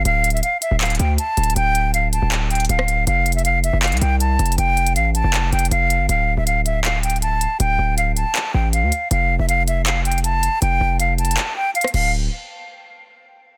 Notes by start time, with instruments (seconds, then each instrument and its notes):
0.05 808-style bass D1, flute F5, closed hi-hat
0.24 closed hi-hat
0.30 flute E5, closed hi-hat
0.37 closed hi-hat
0.43 flute F5, closed hi-hat
0.62 flute E5, closed hi-hat
0.71 808-style bass D1
0.81 flute F5, clap, closed hi-hat
0.85 closed hi-hat
0.90 closed hi-hat
0.95 closed hi-hat
0.99 808-style bass D2, flute G5, closed hi-hat
1.18 flute A5, closed hi-hat
1.37 808-style bass D1, closed hi-hat
1.44 closed hi-hat
1.50 closed hi-hat
1.56 808-style bass D1, flute G5, closed hi-hat
1.75 closed hi-hat
1.94 flute F5, closed hi-hat
2.13 flute A5, closed hi-hat
2.22 808-style bass D1
2.32 clap, closed hi-hat
2.50 flute G5, closed hi-hat
2.55 closed hi-hat
2.60 closed hi-hat
2.65 closed hi-hat
2.69 808-style bass D1, flute F5, closed hi-hat
2.79 cross-stick
2.88 closed hi-hat
3.07 808-style bass F1, flute F5, closed hi-hat
3.26 closed hi-hat
3.32 flute E5, closed hi-hat
3.39 closed hi-hat
3.45 flute F5, closed hi-hat
3.64 flute E5, closed hi-hat
3.73 808-style bass F1
3.83 flute F5, clap, closed hi-hat
3.87 closed hi-hat
3.92 808-style bass C2, closed hi-hat
3.97 closed hi-hat
4.01 808-style bass C2, flute G5, closed hi-hat
4.20 flute A5, closed hi-hat
4.39 808-style bass F1, closed hi-hat
4.46 closed hi-hat
4.52 closed hi-hat
4.58 808-style bass F1, flute G5, closed hi-hat
4.77 closed hi-hat
4.87 closed hi-hat
4.96 808-style bass A1, flute F5, closed hi-hat
5.15 flute A5, closed hi-hat
5.24 808-style bass F1
5.34 clap, closed hi-hat
5.52 808-style bass F1, flute G5, closed hi-hat
5.59 closed hi-hat
5.65 closed hi-hat
5.71 808-style bass F1, flute F5, closed hi-hat
5.90 closed hi-hat
6.00 808-style bass G1
6.09 808-style bass D1, flute F5, closed hi-hat
6.37 808-style bass D1, flute E5
6.47 flute F5, closed hi-hat
6.66 flute E5, closed hi-hat
6.84 flute F5, clap, closed hi-hat
7.03 flute G5, closed hi-hat
7.10 closed hi-hat
7.16 closed hi-hat
7.22 flute A5, closed hi-hat
7.41 closed hi-hat
7.60 808-style bass D1, flute G5, closed hi-hat
7.79 808-style bass D1
7.98 flute F5, closed hi-hat
8.17 flute A5, closed hi-hat
8.35 clap, closed hi-hat
8.54 808-style bass A1, flute G5
8.73 flute F5, closed hi-hat
8.83 808-style bass D2
8.92 closed hi-hat
9.11 808-style bass F1, flute F5, closed hi-hat
9.39 808-style bass F1, flute E5
9.49 flute F5, closed hi-hat
9.67 flute E5, closed hi-hat
9.86 flute F5, clap, closed hi-hat
10.05 flute G5, closed hi-hat
10.12 closed hi-hat
10.18 closed hi-hat
10.24 flute A5, closed hi-hat
10.43 closed hi-hat
10.62 808-style bass F1, flute G5, closed hi-hat
10.81 808-style bass F1
11.00 flute F5, closed hi-hat
11.18 flute A5, closed hi-hat
11.25 closed hi-hat
11.31 closed hi-hat
11.37 clap, closed hi-hat
11.56 flute G5
11.75 flute F5, closed hi-hat
11.81 cross-stick, closed hi-hat
11.88 closed hi-hat
11.94 808-style bass D1, flute F5, crash